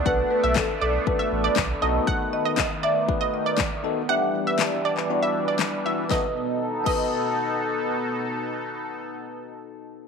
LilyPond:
<<
  \new Staff \with { instrumentName = "Synth pluck" } { \time 4/4 \key e \dorian \tempo 4 = 119 fis''16 r8 e''8 r16 d''16 r8 e''16 r16 d''16 r8 dis''16 r16 | fis''16 r8 dis''8 r16 d''16 r8 dis''16 r16 d''16 r4 | fis''16 r8 e''8 r16 d''16 r8 e''16 r16 d''16 r8 e''16 r16 | dis''8 r4 dis''4. r4 |
r1 | }
  \new Staff \with { instrumentName = "Marimba" } { \time 4/4 \key e \dorian b'8 b'8 a'8 a'8 b'4. r8 | r8 dis''4 e''4 dis''4 dis''8 | e''2 d''4. r8 | b'8 r4 b'2~ b'8~ |
b'1 | }
  \new Staff \with { instrumentName = "Tine electric piano" } { \time 4/4 \key e \dorian <b d' fis' a'>4. r8 <b d' fis' a'>4 r8 <b dis' fis' a'>8~ | <b dis' fis' a'>4 r4 <b dis' fis' b'>4 r8 <b dis' fis' a'>8 | <b d' e' g'>4. r8 <b d' e' fis'>4 r8 <b d' e' fis'>8 | <b dis' fis' a'>8 r4 <b dis' fis' a'>2~ <b dis' fis' a'>8~ |
<b dis' fis' a'>1 | }
  \new Staff \with { instrumentName = "Analog synth pad" } { \time 4/4 \key e \dorian << { <a b>1~ | <a b>1 | <e d'>1 | <b, b dis' a'>1~ |
<b, b dis' a'>1 | } \\ { d'2.~ d'8 dis8~ | dis1 | g1 | r1 |
r1 | } >> }
  \new Staff \with { instrumentName = "Sub bass" } { \clef bass \time 4/4 \key e \dorian b,,8 r16 b,,8 r16 b,,8 r8 a,,8 b,,8 b,,8 | r1 | r1 | r1 |
r1 | }
  \new DrumStaff \with { instrumentName = "Drums" } \drummode { \time 4/4 bd4 <hc bd sn>4 bd4 <hc bd sn>4 | bd4 <hc bd sn>4 bd4 <hc bd sn>4 | r4 <hc sn>8. hc16 r4 <hc sn>4 | <bd sn>4 r8 <cymc bd>8 r4 r4 |
r4 r4 r4 r4 | }
>>